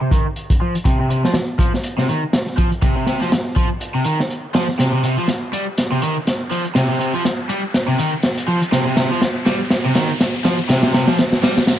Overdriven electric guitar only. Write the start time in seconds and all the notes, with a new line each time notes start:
0.01 C3
0.12 D#3
0.61 F3
0.85 C3
0.99 C3
1.10 C3
1.24 F3
1.59 F3
1.98 C3
2.09 D#3
2.57 F3
2.82 C3
2.96 C3
3.07 C3
3.21 F3
3.56 F3
3.95 C3
4.05 D#3
4.55 F3
4.79 C3
4.93 C3
5.04 C3
5.18 F3
5.53 G3
5.92 C3
6.02 D#3
6.51 F3
6.76 C3
6.90 C3
7.00 C3
7.14 F3
7.49 G3
7.88 C3
7.98 D#3
8.48 F3
8.72 C3
8.86 C3
8.97 C3
9.11 F3
9.46 G3
9.85 C3
9.95 D#3
10.45 F3
10.69 C3
10.83 C3
10.94 C3
11.08 F3
11.43 G3